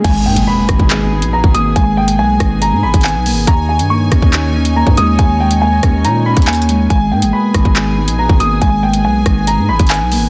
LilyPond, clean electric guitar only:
\new Staff \with { instrumentName = "Clean electric guitar" } { \time 4/4 \key gis \minor \tempo 4 = 140 r8 ais8 b8 dis'8 gis'8 dis'8 b8 ais8 | gis8 ais8 b8 dis'8 gis'8 dis'8 b8 ais8 | dis8 gis'8 ais8 cis'8 dis'8 cis'8 ais8 gis8 | dis8 gis8 ais8 cis'8 dis'8 cis'8 ais8 gis8 |
gis8 ais8 b8 dis'8 gis'8 dis'8 b8 ais8 | gis8 ais8 b8 dis'8 gis'8 dis'8 b8 ais8 | }